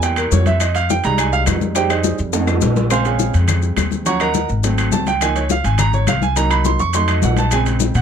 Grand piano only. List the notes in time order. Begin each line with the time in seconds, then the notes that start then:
Already playing: G3 A#3 E4
0.03 G5
0.18 A#4
0.33 C#5
0.47 E5
0.61 D#5
0.75 F5
0.90 G5
1.04 G3 G#3 D#4 A#5
1.19 G#5
1.33 F5
1.75 G3 G#3 D#4 G4 C5 D#5 G5
1.90 D#4 G#4 C5 D#5
2.33 A3 C#4 D#4
2.90 C#3 G#3 C4 C5 F5 G#5 C6
3.06 G#4 C#5 F5 G#5
4.05 F3 F#3 C#4 C#5 F#5 A#5 C#6
4.21 A#4 D#5 F#5 A#5
4.63 F#3 A3 C4
4.92 A5
5.08 G5
5.21 F3 A#3 D#4 G#5
5.36 C#5
5.51 F5
5.65 G#5
5.79 A#5
5.94 C#5
6.08 F5
6.22 G#5
6.36 F#3 A#3 D#4 A#5
6.50 B5
6.66 C6
6.80 C#6
6.95 F#3 A3 D#4 C6
7.08 D#5
7.23 F#5
7.38 A5
7.52 C#3 G#3 C4 G#5
7.96 F#5